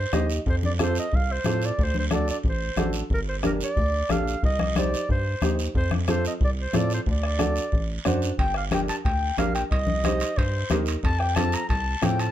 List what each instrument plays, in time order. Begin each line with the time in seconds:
Already playing: clarinet C5
0.13 analog synth bass D#2, upright piano D#4 G4 D#5, bombo rim, high conga, short guiro
0.30 short guiro
0.46 analog synth bass F2, clarinet C5, bombo low, long guiro
0.63 clarinet D5, high conga
0.79 upright piano C4 F4 A4, clarinet C5, bombo rim, high conga, short guiro
0.95 clarinet D#5, short guiro
1.12 analog synth bass C2, clarinet F5, bombo low, long guiro
1.32 clarinet C5
1.44 analog synth bass A2, upright piano C4 F4 A4, bombo rim, high conga, short guiro
1.62 clarinet D5, short guiro
1.78 analog synth bass D2, bombo low, long guiro
1.83 clarinet C5
1.95 high conga
1.99 clarinet C5
2.11 upright piano D4 F#4 A4, bombo rim, high conga, short guiro
2.15 clarinet D5
2.28 clarinet D5, short guiro
2.43 analog synth bass A1, bombo low, long guiro
2.49 clarinet C5
2.76 analog synth bass A1, upright piano D4 F#4 A4, bombo rim, high conga, short guiro
2.93 short guiro
3.10 analog synth bass G1, clarinet A#4, bombo low, long guiro
3.29 clarinet C5
3.43 upright piano D4 G4 A#4, clarinet A#4, bombo rim, high conga, short guiro
3.61 clarinet D5, short guiro
3.77 analog synth bass D2, bombo low, long guiro
4.09 analog synth bass A#1, upright piano D4 G4 A4, clarinet F5, bombo rim, high conga, short guiro
4.27 short guiro
4.43 analog synth bass C2, clarinet D#5, bombo low, long guiro
4.59 bombo rim, high conga
4.76 upright piano D#4 G4 C5, clarinet D5, bombo rim, high conga, short guiro
4.94 short guiro
5.09 analog synth bass G2, clarinet C5, bombo low, long guiro
5.42 analog synth bass D#2, upright piano D#4 G4 C5, bombo rim, high conga, short guiro
5.59 short guiro
5.75 analog synth bass F2, clarinet C5, bombo low, long guiro
5.91 bombo rim, high conga
6.08 upright piano C4 F4 A4, clarinet C5, bombo rim, high conga, short guiro
6.25 clarinet D#5, short guiro
6.41 analog synth bass C2, clarinet D5, bombo low, long guiro
6.60 clarinet C5
6.73 analog synth bass A2, upright piano C4 F4 A4, clarinet D5, bombo rim, high conga, short guiro
6.90 clarinet C5, short guiro
7.06 analog synth bass D2, bombo low, long guiro
7.11 clarinet D5
7.23 bombo rim
7.38 upright piano D4 F#4 A4, bombo rim, high conga, short guiro
7.56 short guiro
7.72 analog synth bass A1, bombo low, long guiro
8.05 analog synth bass F#2, upright piano D4 F#4 C5, bombo rim, high conga, short guiro
8.22 short guiro
8.38 analog synth bass G1, clarinet G5, bombo low, high timbale, long guiro
8.54 clarinet F5, bombo rim
8.71 upright piano D4 G4 A#4, clarinet G5, bombo rim, high conga, high timbale, short guiro
8.88 clarinet A5, high timbale, short guiro
9.05 analog synth bass D2, clarinet G5, bombo low, high timbale, long guiro
9.37 analog synth bass A#1, upright piano D4 G4 A#4, clarinet F5, bombo rim, high conga, high timbale, short guiro
9.55 clarinet G5, high timbale, short guiro
9.71 analog synth bass C2, clarinet D#5, bombo low, high timbale, long guiro
9.87 high conga
10.04 upright piano D#4 G4 C5, bombo rim, high conga, high timbale, short guiro
10.20 high timbale, short guiro
10.36 analog synth bass G2, clarinet C5, bombo low, high timbale, long guiro
10.70 analog synth bass D#2, upright piano D#4 G4 A#4, bombo rim, high conga, high timbale, short guiro
10.86 high timbale, short guiro
11.03 analog synth bass F2, clarinet A5, bombo low, high timbale, long guiro
11.19 clarinet G5, bombo rim
11.35 upright piano C4 F4 A4, clarinet A5, bombo rim, high conga, high timbale, short guiro
11.52 clarinet A#5, high timbale, short guiro
11.69 analog synth bass C2, clarinet A5, bombo low, high timbale, long guiro
12.02 analog synth bass A2, upright piano C4 F4 A4, clarinet G5, bombo rim, high conga, high timbale, short guiro
12.19 clarinet A5, high timbale, short guiro